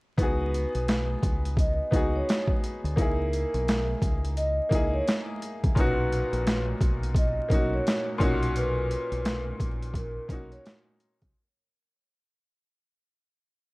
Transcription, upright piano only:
0.17 B3 D#4 F#4
0.23 G#4
1.91 B3 D#4 F#4
1.96 G#4
2.96 A#3 D#4 E4
3.02 G#4
4.69 A#3 D#4 E4
4.75 G#4
5.75 A#2 C#4 D#4
5.80 F#4
7.48 A#3 C#4 D#4
7.54 F#4
8.18 A#2 C#4 D#4
8.23 F#4
10.28 A#3 C#4 D#4
10.33 F#4

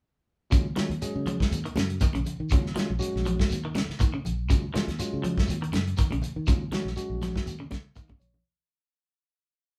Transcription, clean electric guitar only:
0.52 C#3
0.77 D#3
1.27 F3
1.65 D#3
1.77 C#3
2.02 D#3
2.15 C#3
2.52 C#3
2.76 D#3
3.26 F3
3.65 D#3
3.76 C#3
4.00 D#3
4.14 C#3
4.50 C#3
4.74 D#3
5.23 F3
5.62 D#3
5.73 C#3
5.99 D#3
6.12 C#3
6.48 C#3
6.72 D#3
7.23 F3
7.60 C#3
7.72 C#3
7.97 D#3
8.10 C#3

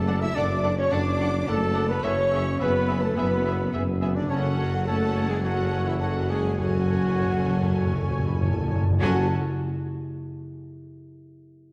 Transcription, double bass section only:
Already playing: F#2
0.37 F#2
0.91 F#2
1.48 F#2
2.05 F#2
2.61 F#2
3.17 F#2
3.73 F#2
4.30 F#2
9.01 F#2

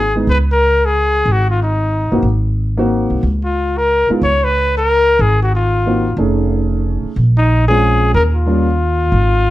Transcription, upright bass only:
Already playing: G#1
0.27 C#2
1.25 G#1
2.12 F#1
2.23 G#1
3.10 C2
3.23 C#2
4.09 muted upright bass stroke
4.22 C#2
5.19 G#1
6.17 F1
7.03 muted upright bass stroke
7.16 A#1
8.14 D#2
9.12 G#1

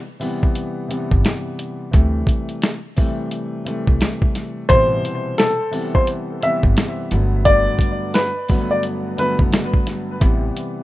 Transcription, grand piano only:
0.20 C3 E3 G3 B3
0.88 C3 E3 G3 B3
1.91 C3 E3 G3 A3
2.96 C3 E3 G3 A3
3.65 C3 E3 G3 A3
4.69 B2 C3 E3 G3
5.71 C3 E3 G3 B3
6.43 C3 E3 G3 B3
7.11 G2 D3 F#3 A3 B3
7.45 G2 D3 F#3 A3 B3
8.49 G2 D3 F#3 A3 B3
9.17 G2 D3 F#3 A3 B3
10.20 C3 E3 G3 B3

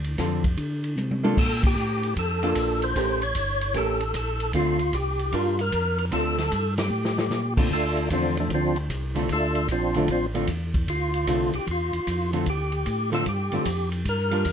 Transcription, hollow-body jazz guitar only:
0.18 D3 C4 F4 A4
1.24 A#3 D4 F4 A4
2.43 A#3 D4 F4 A4
2.96 A3 C#4 G4 A#4
3.74 A3 C#4 G4 A#4
4.54 D3 A3 C4 F4
5.33 G3 D4 F4 A#4
6.11 D3 A3 C4 F4
7.57 D3 A3 C4 F4
8.11 D3 A3 C4 F4
9.15 D3 A3 C4 F4
9.95 D3 A3 C4 F4
10.34 D3 A3 C4 F4
11.27 D3 A3 C4 F4
12.33 D3 A3 C4 F4
13.12 D3 A3 C4 F4
13.53 D3 A3 C4 F4
14.31 G3 D4 F4 A#4

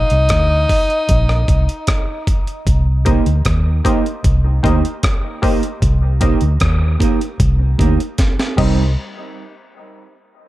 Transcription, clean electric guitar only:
3.06 A#3 D#4 G4 A#4
3.84 A#3 D#4 G4 A#4
4.44 muted clean electric guitar stroke
4.63 A#3 D#4 G4 A#4
5.42 A#3 D#4 G4 A#4
6.20 A#3 D#4 G4 A#4
6.99 A#3 D#4 G4 A#4
7.59 muted clean electric guitar stroke
7.78 A#3 D#4 G4 A#4
8.57 G3 C4 D#4 A#4

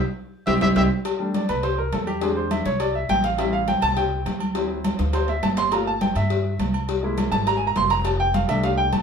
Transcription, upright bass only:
0.47 C2
0.62 C2
0.76 C2
1.49 C2
1.93 E2
2.65 C2
3.09 A1
3.82 C2
4.26 D2
4.99 D2
5.43 G1
6.15 G2
6.59 C2
7.32 G#1
7.76 F1
8.49 C2
8.92 F2

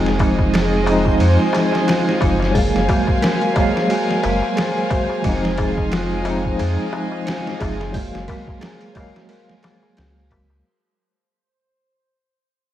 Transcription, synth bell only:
0.19 C5
0.53 G#4
0.87 F4
1.21 C5
1.54 G#4
1.88 F4
2.21 C5
2.54 G#4
2.88 F#4
3.22 A#4
3.56 G#4
3.90 F#4
4.23 A#4
4.56 G#4
4.91 F#4
5.24 C5
5.59 G#4
5.92 F4
6.25 C5
6.59 G#4
6.93 F4
7.26 C5
7.60 G#4
7.94 F#4
8.28 A#4
8.61 G#4
8.95 F#4
9.29 A#4
9.63 G#4
9.97 F#4
10.30 A#4

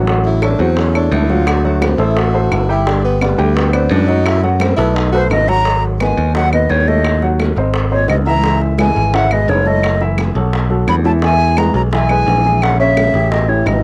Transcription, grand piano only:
0.08 F#3 F#4 F#5
0.42 A3 A4 C#5
0.59 F#3 F#4 F#5
0.95 A3 A4 C#5
1.30 F#3 F#4 F#5
1.65 F#3 F#4 F#5
1.99 A3 A4 C5
2.34 A3 A4 C5
2.69 G3 G4 G5
2.86 G3 G4 G5
3.21 B3 B4 D5
3.38 G3 G4 G5
3.73 B3 B4 D5
4.08 F#3 F#4 F#5
4.43 F#3 F#4 F#5
4.78 A3 A4 B4
5.14 A3 A4 B4
5.48 F#3 F#4 F#5
5.65 F#3 F#4 F#5
6.01 B3 B4 D#5
6.36 F#3 F#4 F#5
6.54 B3 B4 D#5
6.87 A3 A4 C#5
7.22 F#3 F#4 F#5
7.58 C4 C5 D#5
7.92 C4 C5 D#5
8.27 E3 E4 E5
8.45 E3 E4 E5
8.80 G#3 G#4 B4
9.14 E3 E4 E5
9.32 G#3 G#4 B4
9.66 A3 A4 C#5
10.01 E3 E4 E5
10.36 F#3 F#4 A4
10.70 F#3 F#4 A4
11.05 E3 E4 E5
11.23 E3 E4 E5
11.57 G#3 G#4 B4
11.93 E3 E4 E5
12.10 G#3 G#4 B4
12.45 E3 E4 G#4
12.79 C#3 C#4 C#5
13.15 E3 E4 G4
13.48 E3 E4 G4

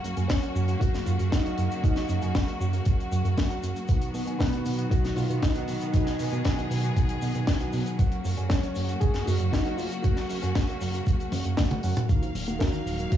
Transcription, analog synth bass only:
0.04 F#2
0.17 F#2
0.30 F#1
0.55 F#2
0.81 F#1
1.07 F#2
1.20 F#2
1.32 F#1
1.58 F#2
1.84 F#1
2.09 F#2
2.22 F#2
2.35 F#1
2.61 F#2
2.86 F#1
3.12 F#2
3.25 F#2
3.38 F#1
3.63 F#2
3.89 B1
4.14 B2
4.27 B2
4.40 B1
4.66 B2
4.91 B1
5.17 B2
5.30 B2
5.43 B1
5.68 B2
5.94 B1
6.20 B2
6.32 B2
6.45 B1
6.71 B2
6.96 B1
7.22 B2
7.35 B2
7.48 B1
7.74 B2
7.99 F#1
8.25 F#2
8.38 F#2
8.50 F#1
8.76 F#2
9.02 F#1
9.27 F#2
9.40 F#2
9.53 F#1
9.79 F#2
10.04 F#1
10.30 F#2
10.43 F#2
10.56 F#1
10.81 F#2
11.07 F#1
11.32 F#2
11.45 F#2
11.58 F#1
11.84 F#2
12.09 D#2
12.35 D#1
12.48 D#1
12.61 D#2
12.86 D#1
13.12 D#2

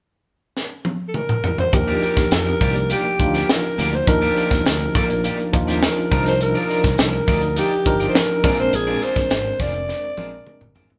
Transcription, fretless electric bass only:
1.73 D#2
2.17 D#2
2.32 F2
2.61 C2
3.20 D2
3.79 D2
4.07 D#2
4.51 D#2
4.66 D2
4.95 A#1
5.54 D#2
6.12 C2
6.84 C2
6.99 C2
7.28 D2
7.86 G1
8.44 A#1
8.73 A#1
9.16 A#1
9.31 G#1
9.60 F1
10.18 A#1
10.62 G1
10.76 G#1
10.90 A1

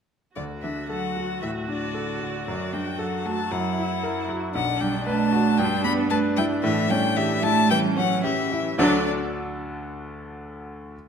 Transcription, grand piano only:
0.36 D2
0.64 D4
0.89 A4
1.17 F#4
1.43 A2
1.68 D4
1.94 A4
2.21 F#4
2.48 F#2
2.73 D4
2.99 A4
3.26 F#4
3.51 F#2
3.78 E4
4.03 A#4
4.29 F#4
4.55 B1
4.81 D4
5.07 B4
5.32 F#4
5.59 G2
5.85 D4
6.11 B4
6.38 E4
6.64 A2
6.91 C#4
7.18 G4
7.44 E4
7.71 E3
7.97 C#4
8.24 G4
8.52 E4
8.79 D2 D3 D4 F#4 A4 F#5

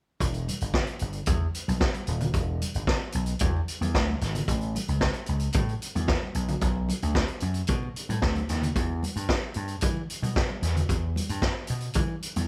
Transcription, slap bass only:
0.20 E1
0.61 G1
1.01 G1
1.27 E2
1.68 B1
2.08 D#1
2.34 E1
2.75 G1
3.15 B1
3.41 E2
3.81 E2
3.95 D2
4.21 G#1
4.48 A1
4.88 C#2
5.29 C#2
5.55 A2
5.95 E2
6.35 B1
6.62 B1
7.03 D2
7.42 F#2
7.69 B2
8.09 A2
8.22 D2
8.49 D#2
8.76 E2
9.16 G2
9.56 G2
9.82 E3
10.23 B2
10.62 E2
10.90 E2
11.30 G2
11.70 B2
11.96 E3
12.36 E2

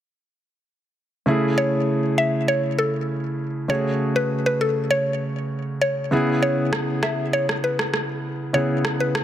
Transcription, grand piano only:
1.26 C#3 A3 E4 G#4
3.68 C#3 A3 F#4 G#4
6.11 C#3 B3 E4 G#4
8.53 C#3 B3 E4 G#4

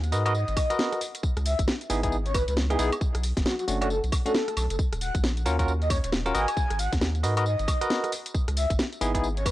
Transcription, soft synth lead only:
0.35 D#5
1.46 E5
2.25 C#5
2.34 B4
2.48 B4
2.70 G#4
2.79 G#4
3.45 F#4
3.59 F#4
3.81 A4
3.90 A4
4.26 A4
4.57 A4
4.70 A4
5.01 F#5
5.81 D#5
5.90 C#5
6.04 C#5
6.35 G#5
6.79 F#5
7.46 D#5
8.57 E5
9.37 C#5
9.46 B4

